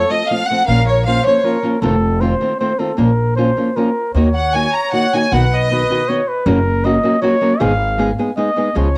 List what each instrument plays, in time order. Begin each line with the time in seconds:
Already playing: trumpet A4
0.10 nylon-string guitar F3 A3 C4 F4, violin section D#5
0.28 nylon-string guitar F3 A3 C4 F4, violin section F5
0.48 nylon-string guitar F3 A3 C4 F4, violin section F#5
0.67 upright bass A#1, nylon-string guitar A#2 F3 A#3 C#4 F4, trumpet A#4, violin section F5
0.87 violin section C#5
1.06 nylon-string guitar F3 A#3 C#4 F4, trumpet C5, violin section F5
1.25 nylon-string guitar F3 A#3 C#4 F4, violin section C#5
1.43 nylon-string guitar F3 A#3 C#4 F4, trumpet A#4
1.63 nylon-string guitar F3 A#3 C#4 F4
1.82 upright bass F1, nylon-string guitar F2 C3 D#3 A3 C4 F4, trumpet A4
2.21 nylon-string guitar D#3 A3 C4 F4, trumpet C5
2.41 nylon-string guitar D#3 A3 C4 F4
2.60 nylon-string guitar D#3 A3 C4 F4, trumpet C5
2.79 nylon-string guitar D#3 A3 C4 F4, trumpet A4
2.97 upright bass A#1, nylon-string guitar A#2 F3 A#3 C#4 F4, trumpet A#4
3.36 nylon-string guitar F3 A#3 C#4 F4, trumpet C5
3.57 nylon-string guitar F3 A#3 C#4 F4
3.76 nylon-string guitar F3 A#3 C#4 F4, trumpet A#4
4.14 upright bass D#2, nylon-string guitar D#3 A#3 D#4 F#4, trumpet C#5
4.35 violin section F#5
4.54 nylon-string guitar D#3 A#3 D#4 F#4, violin section G#5
4.74 violin section A#5
4.92 nylon-string guitar D#3 A#3 D#4 F#4, violin section F#5
5.13 nylon-string guitar D#3 A#3 D#4 F#4, violin section G#5
5.32 upright bass B1, nylon-string guitar B2 D#3 B3 D#4 F#4, trumpet B4, violin section F#5
5.53 violin section D#5
5.70 nylon-string guitar D#3 B3 D#4 F#4, trumpet B4
5.90 nylon-string guitar D#3 B3 D#4 F#4
6.08 nylon-string guitar D#3 B3 D#4 F#4, trumpet C#5
6.28 trumpet B4
6.46 upright bass F#1, nylon-string guitar F#2 C#3 F#3 A#3 C#4 F#4, trumpet A#4
6.84 nylon-string guitar F#3 A#3 C#4 F#4, trumpet D#5
7.03 nylon-string guitar F#3 A#3 C#4 F#4
7.22 nylon-string guitar F#3 A#3 C#4 F#4, trumpet C#5
7.41 nylon-string guitar F#3 A#3 C#4 F#4
7.60 upright bass G#1, nylon-string guitar G#2 D#3 G#3 B3 D#4 G#4, trumpet F5
7.98 nylon-string guitar G#3 B3 D#4 G#4
8.18 nylon-string guitar G#3 B3 D#4 G#4
8.37 nylon-string guitar G#3 B3 D#4 G#4, trumpet D#5
8.56 nylon-string guitar G#3 B3 D#4 G#4
8.75 upright bass C#2, nylon-string guitar C#3 F3 G#3 F4 G#4, trumpet C#5